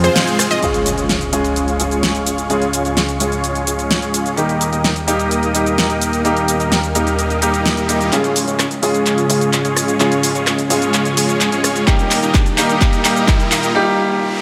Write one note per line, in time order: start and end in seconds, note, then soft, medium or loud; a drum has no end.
0.00 0.65 F3 loud
0.00 0.62 G#3 medium
0.00 0.48 G#3 medium
0.00 0.65 C4 medium
0.00 0.48 C4 medium
0.00 0.63 F4 loud
0.00 0.48 F4 medium
0.00 0.59 G#4 medium
0.00 0.48 G#4 medium
0.00 0.48 C5 loud
0.00 0.59 F5 medium
0.00 0.59 C6 medium
0.00 closed hi-hat soft
0.04 shaker soft
0.16 snare loud
0.16 closed hi-hat medium
0.16 shaker medium
0.27 closed hi-hat soft
0.27 shaker soft
0.39 cross-stick medium
0.39 open hi-hat medium
0.39 shaker medium
0.51 0.60 G#3 loud
0.51 0.60 C4 loud
0.51 0.60 F4 medium
0.51 0.60 G#4 medium
0.51 0.60 D#5 loud
0.51 closed hi-hat soft
0.51 shaker soft
0.61 4.35 C#2 medium
0.61 1.29 C#3 medium
0.61 1.30 G#3 medium
0.61 0.95 G#3 medium
0.61 1.30 C#4 medium
0.61 0.95 C#4 medium
0.61 0.95 F4 medium
0.61 1.30 F4 medium
0.61 0.95 G#4 medium
0.61 4.34 G#4 medium
0.61 1.31 G#4 medium
0.61 0.95 C#5 loud
0.61 4.34 F5 medium
0.61 4.34 C#6 medium
0.61 closed hi-hat medium
0.61 impact medium
0.61 shaker soft
0.74 closed hi-hat soft
0.74 shaker soft
0.86 closed hi-hat medium
0.86 shaker medium
0.98 1.14 G#3 medium
0.98 1.14 C#4 medium
0.98 1.14 F4 medium
0.98 1.14 G#4 medium
0.98 1.14 C#5 medium
0.98 closed hi-hat soft
0.98 shaker soft
1.09 snare loud
1.09 closed hi-hat medium
1.09 shaker soft
1.21 closed hi-hat soft
1.21 shaker soft
1.32 1.77 C#3 medium
1.32 1.77 G#3 medium
1.32 1.77 C#4 medium
1.32 1.77 F4 medium
1.32 1.77 G#4 medium
1.32 1.77 G#4 loud
1.32 1.77 C#5 medium
1.32 closed hi-hat medium
1.32 shaker medium
1.44 closed hi-hat soft
1.44 shaker soft
1.56 closed hi-hat medium
1.56 shaker soft
1.68 closed hi-hat soft
1.68 shaker soft
1.78 2.47 C#3 medium
1.78 2.47 G#3 medium
1.78 2.12 G#3 loud
1.78 2.47 C#4 medium
1.78 2.12 C#4 medium
1.78 2.12 F4 medium
1.78 2.47 F4 medium
1.78 2.12 G#4 medium
1.78 2.48 G#4 medium
1.78 2.12 C#5 loud
1.78 closed hi-hat medium
1.78 shaker medium
1.91 closed hi-hat soft
1.91 shaker soft
2.03 snare loud
2.03 closed hi-hat medium
2.03 shaker soft
2.15 2.47 G#3 medium
2.15 2.47 C#4 medium
2.15 2.47 F4 medium
2.15 2.47 G#4 medium
2.15 2.47 C#5 medium
2.15 closed hi-hat soft
2.15 shaker soft
2.26 closed hi-hat medium
2.26 shaker medium
2.38 closed hi-hat soft
2.38 shaker soft
2.49 2.62 C#3 medium
2.49 2.62 G#3 medium
2.49 2.82 G#3 medium
2.49 2.82 C#4 medium
2.49 2.62 C#4 medium
2.49 2.82 F4 medium
2.49 2.63 F4 medium
2.49 2.82 G#4 medium
2.49 2.63 G#4 loud
2.49 2.82 C#5 loud
2.49 closed hi-hat medium
2.49 shaker soft
2.62 closed hi-hat soft
2.62 shaker soft
2.73 closed hi-hat medium
2.73 shaker medium
2.85 3.02 G#3 medium
2.85 3.02 C#4 medium
2.85 3.02 F4 medium
2.85 3.02 G#4 medium
2.85 3.02 C#5 medium
2.85 closed hi-hat soft
2.85 shaker soft
2.97 snare loud
2.97 closed hi-hat medium
2.97 shaker soft
3.09 closed hi-hat soft
3.09 shaker soft
3.19 4.34 C#3 medium
3.19 4.34 G#3 medium
3.19 3.64 G#3 medium
3.19 4.35 C#4 medium
3.19 3.64 C#4 medium
3.19 3.64 F4 medium
3.19 4.35 F4 medium
3.19 3.64 G#4 medium
3.19 4.35 G#4 medium
3.19 3.64 C#5 medium
3.19 closed hi-hat medium
3.19 shaker medium
3.32 closed hi-hat soft
3.32 shaker soft
3.44 closed hi-hat medium
3.44 shaker soft
3.55 closed hi-hat soft
3.55 shaker soft
3.67 4.00 G#3 medium
3.67 4.00 C#4 medium
3.67 3.99 F4 medium
3.67 4.00 G#4 medium
3.67 4.00 C#5 loud
3.67 closed hi-hat medium
3.67 shaker medium
3.79 closed hi-hat soft
3.79 shaker soft
3.91 snare loud
3.91 closed hi-hat medium
3.91 shaker soft
4.02 4.35 G#3 medium
4.02 4.35 C#4 medium
4.02 4.35 F4 medium
4.02 4.35 G#4 medium
4.02 4.35 C#5 medium
4.02 closed hi-hat soft
4.02 shaker soft
4.14 closed hi-hat medium
4.14 shaker medium
4.26 closed hi-hat soft
4.26 shaker soft
4.36 8.10 D#2 medium
4.36 5.04 G3 medium
4.36 5.05 A#3 medium
4.36 4.70 A#3 medium
4.36 4.70 D#4 medium
4.36 5.05 D#4 medium
4.36 4.70 G4 medium
4.36 5.06 G4 medium
4.36 4.70 A#4 medium
4.36 8.09 A#4 medium
4.36 4.70 D#5 medium
4.36 8.09 G5 medium
4.36 6.23 D#6 medium
4.36 closed hi-hat medium
4.36 riser medium
4.36 shaker soft
4.49 closed hi-hat soft
4.49 shaker soft
4.61 closed hi-hat medium
4.61 shaker medium
4.73 4.89 A#3 medium
4.73 4.89 D#4 medium
4.73 4.89 G4 medium
4.73 4.89 A#4 medium
4.73 4.89 D#5 loud
4.73 closed hi-hat soft
4.73 shaker soft
4.84 snare loud
4.84 closed hi-hat medium
4.84 shaker soft
4.96 closed hi-hat soft
4.96 shaker soft
5.07 5.51 G3 medium
5.07 5.52 A#3 medium
5.07 5.52 D#4 medium
5.07 5.52 G4 medium
5.07 5.52 G4 loud
5.07 5.52 A#4 medium
5.07 5.52 D#5 medium
5.07 closed hi-hat medium
5.07 shaker medium
5.19 closed hi-hat soft
5.19 shaker soft
5.31 closed hi-hat medium
5.31 shaker soft
5.43 closed hi-hat soft
5.43 shaker soft
5.53 6.22 G3 medium
5.53 6.22 A#3 medium
5.53 5.87 A#3 medium
5.53 5.87 D#4 medium
5.53 6.22 D#4 medium
5.53 5.87 G4 medium
5.53 6.23 G4 medium
5.53 5.87 A#4 medium
5.53 5.87 D#5 loud
5.53 closed hi-hat medium
5.53 shaker medium
5.66 closed hi-hat soft
5.66 shaker soft
5.78 snare loud
5.78 closed hi-hat medium
5.78 shaker soft
5.90 6.22 A#3 medium
5.90 6.22 D#4 medium
5.90 6.22 G4 medium
5.90 6.22 A#4 medium
5.90 6.22 D#5 medium
5.90 closed hi-hat soft
5.90 shaker soft
6.01 closed hi-hat medium
6.01 shaker medium
6.13 closed hi-hat soft
6.13 shaker soft
6.24 6.37 G3 medium
6.24 6.37 A#3 medium
6.24 6.57 A#3 medium
6.24 6.57 D#4 medium
6.24 6.37 D#4 medium
6.24 6.57 G4 medium
6.24 6.38 G4 loud
6.24 6.57 A#4 medium
6.24 6.57 D#5 medium
6.24 8.11 F6 medium
6.24 closed hi-hat medium
6.24 shaker soft
6.37 closed hi-hat soft
6.37 shaker soft
6.48 closed hi-hat medium
6.48 shaker medium
6.60 6.77 A#3 medium
6.60 6.77 D#4 medium
6.60 6.77 G4 medium
6.60 6.77 A#4 medium
6.60 6.77 D#5 loud
6.60 closed hi-hat soft
6.60 shaker soft
6.72 snare loud
6.72 closed hi-hat medium
6.72 shaker soft
6.83 closed hi-hat soft
6.83 shaker soft
6.95 7.39 G3 medium
6.95 7.40 A#3 medium
6.95 7.39 A#3 medium
6.95 7.39 D#4 medium
6.95 7.40 D#4 medium
6.95 7.39 G4 medium
6.95 7.40 G4 medium
6.95 7.39 A#4 medium
6.95 7.39 D#5 medium
6.95 closed hi-hat medium
6.95 shaker medium
7.07 closed hi-hat soft
7.07 shaker soft
7.19 closed hi-hat medium
7.19 shaker soft
7.30 closed hi-hat soft
7.30 shaker soft
7.41 7.86 G3 medium
7.41 7.86 A#3 medium
7.41 7.74 A#3 loud
7.41 7.74 D#4 medium
7.41 7.86 D#4 medium
7.41 7.74 G4 medium
7.41 7.86 G4 loud
7.41 7.74 A#4 medium
7.41 7.74 D#5 loud
7.41 closed hi-hat medium
7.41 shaker medium
7.54 closed hi-hat soft
7.54 shaker soft
7.65 snare loud
7.65 closed hi-hat medium
7.65 shaker soft
7.77 8.10 A#3 medium
7.77 8.10 D#4 medium
7.77 8.10 G4 medium
7.77 8.10 A#4 medium
7.77 8.10 D#5 medium
7.77 closed hi-hat soft
7.77 shaker soft
7.88 8.09 G3 medium
7.88 8.10 A#3 medium
7.88 8.10 D#4 medium
7.88 8.10 G4 medium
7.88 closed hi-hat medium
7.88 shaker medium
8.01 closed hi-hat soft
8.01 shaker soft
8.11 8.79 C#3 medium
8.11 11.84 C#3 medium
8.11 8.80 G#3 medium
8.11 8.45 G#3 medium
8.11 11.84 G#3 medium
8.11 8.45 C#4 medium
8.11 8.80 C#4 medium
8.11 8.45 F4 medium
8.11 11.84 F4 medium
8.11 8.80 F4 medium
8.11 8.45 G#4 medium
8.11 8.81 G#4 medium
8.11 8.45 C#5 loud
8.11 clap soft
8.11 closed hi-hat medium
8.11 riser medium
8.11 shaker soft
8.24 closed hi-hat soft
8.24 shaker soft
8.36 open hi-hat medium
8.36 shaker medium
8.48 8.64 G#3 medium
8.48 8.64 C#4 medium
8.48 8.64 F4 medium
8.48 8.64 G#4 medium
8.48 8.64 C#5 loud
8.48 closed hi-hat soft
8.48 shaker soft
8.59 cross-stick medium
8.59 clap soft
8.59 closed hi-hat medium
8.59 shaker soft
8.71 closed hi-hat soft
8.71 shaker soft
8.82 9.27 C#3 loud
8.82 9.27 G#3 medium
8.82 9.27 C#4 medium
8.82 9.27 F4 medium
8.82 9.27 G#4 medium
8.82 9.27 G#4 loud
8.82 9.27 C#5 medium
8.82 open hi-hat medium
8.82 shaker medium
8.94 closed hi-hat soft
8.94 shaker soft
9.06 clap medium
9.06 closed hi-hat medium
9.06 shaker soft
9.18 closed hi-hat soft
9.18 shaker soft
9.28 9.97 C#3 medium
9.28 9.97 G#3 medium
9.28 9.62 G#3 loud
9.28 9.97 C#4 medium
9.28 9.62 C#4 medium
9.28 9.62 F4 medium
9.28 9.97 F4 medium
9.28 9.62 G#4 medium
9.28 9.98 G#4 medium
9.28 9.62 C#5 loud
9.28 open hi-hat loud
9.28 shaker medium
9.41 closed hi-hat soft
9.41 shaker soft
9.53 clap medium
9.53 closed hi-hat medium
9.53 shaker soft
9.65 9.97 G#3 medium
9.65 9.97 C#4 medium
9.65 9.97 F4 medium
9.65 9.97 G#4 medium
9.65 9.97 C#5 loud
9.65 closed hi-hat soft
9.65 shaker soft
9.77 cross-stick medium
9.77 open hi-hat medium
9.77 shaker medium
9.88 closed hi-hat soft
9.88 shaker soft
9.99 10.12 C#3 loud
9.99 10.12 G#3 medium
9.99 10.32 G#3 medium
9.99 10.12 C#4 medium
9.99 10.32 C#4 medium
9.99 10.32 F4 medium
9.99 10.13 F4 medium
9.99 10.32 G#4 medium
9.99 10.13 G#4 loud
9.99 10.32 C#5 loud
9.99 clap medium
9.99 closed hi-hat medium
9.99 shaker soft
10.12 closed hi-hat soft
10.12 shaker soft
10.23 open hi-hat loud
10.23 shaker medium
10.35 10.52 G#3 medium
10.35 10.52 C#4 medium
10.35 10.52 F4 medium
10.35 10.52 G#4 medium
10.35 10.52 C#5 loud
10.35 closed hi-hat soft
10.35 shaker soft
10.47 cross-stick medium
10.47 clap medium
10.47 closed hi-hat medium
10.47 shaker soft
10.59 closed hi-hat soft
10.59 shaker soft
10.69 11.84 C#3 medium
10.69 11.84 G#3 medium
10.69 11.14 G#3 medium
10.69 11.14 C#4 medium
10.69 11.85 C#4 medium
10.69 11.14 F4 medium
10.69 11.85 F4 medium
10.69 11.14 G#4 medium
10.69 11.85 G#4 medium
10.69 11.14 C#5 medium
10.69 open hi-hat loud
10.69 shaker medium
10.82 closed hi-hat soft
10.82 shaker soft
10.94 clap medium
10.94 closed hi-hat medium
10.94 shaker soft
11.05 closed hi-hat soft
11.05 shaker soft
11.17 11.49 G#3 loud
11.17 11.49 C#4 medium
11.17 11.49 F4 medium
11.17 11.49 G#4 medium
11.17 11.49 C#5 loud
11.17 open hi-hat loud
11.17 shaker medium
11.29 closed hi-hat soft
11.29 shaker soft
11.41 clap medium
11.41 closed hi-hat medium
11.41 shaker soft
11.52 11.85 G#3 medium
11.52 11.85 C#4 medium
11.52 11.85 F4 medium
11.52 11.85 G#4 medium
11.52 11.85 C#5 medium
11.52 closed hi-hat soft
11.52 shaker soft
11.64 cross-stick medium
11.64 open hi-hat medium
11.64 shaker medium
11.76 closed hi-hat soft
11.76 shaker soft
11.86 13.73 D#3 medium
11.86 12.54 G3 medium
11.86 12.55 A#3 medium
11.86 12.20 A#3 medium
11.86 13.73 A#3 medium
11.86 12.20 D#4 medium
11.86 12.55 D#4 medium
11.86 12.20 G4 medium
11.86 13.73 G4 medium
11.86 12.56 G4 loud
11.86 12.20 A#4 medium
11.86 12.20 D#5 loud
11.86 kick loud
11.86 clap medium
11.86 closed hi-hat medium
11.86 shaker soft
11.99 closed hi-hat soft
11.99 shaker soft
12.11 clap medium
12.11 open hi-hat loud
12.11 shaker medium
12.23 12.39 A#3 medium
12.23 12.39 D#4 medium
12.23 12.39 G4 medium
12.23 12.39 A#4 medium
12.23 12.39 D#5 loud
12.23 closed hi-hat soft
12.23 shaker soft
12.34 kick loud
12.34 clap medium
12.34 closed hi-hat medium
12.34 shaker soft
12.46 closed hi-hat soft
12.46 shaker soft
12.57 13.02 G3 loud
12.57 13.02 A#3 medium
12.57 13.02 D#4 medium
12.57 13.02 G4 medium
12.57 13.02 G4 loud
12.57 13.02 A#4 medium
12.57 13.02 D#5 medium
12.57 clap medium
12.57 open hi-hat loud
12.57 shaker medium
12.69 closed hi-hat soft
12.69 shaker soft
12.81 kick loud
12.81 clap medium
12.81 closed hi-hat medium
12.81 shaker soft
12.93 closed hi-hat soft
12.93 shaker soft
13.03 13.72 G3 medium
13.03 13.72 A#3 medium
13.03 13.37 A#3 loud
13.03 13.37 D#4 medium
13.03 13.72 D#4 medium
13.03 13.37 G4 medium
13.03 13.73 G4 medium
13.03 13.37 A#4 medium
13.03 13.37 D#5 loud
13.03 clap medium
13.03 open hi-hat loud
13.03 shaker medium
13.16 closed hi-hat soft
13.16 shaker soft
13.28 kick loud
13.28 clap medium
13.28 closed hi-hat medium
13.28 shaker soft
13.40 13.72 A#3 medium
13.40 13.72 D#4 medium
13.40 13.72 G4 medium
13.40 13.72 A#4 medium
13.40 13.72 D#5 medium
13.40 closed hi-hat soft
13.40 shaker soft
13.52 clap medium
13.52 open hi-hat medium
13.52 shaker medium
13.63 closed hi-hat soft
13.63 shaker soft
13.74 13.87 G3 medium
13.74 13.87 A#3 medium
13.74 13.88 D#4 medium
13.74 13.88 G4 loud
13.74 noise sweep medium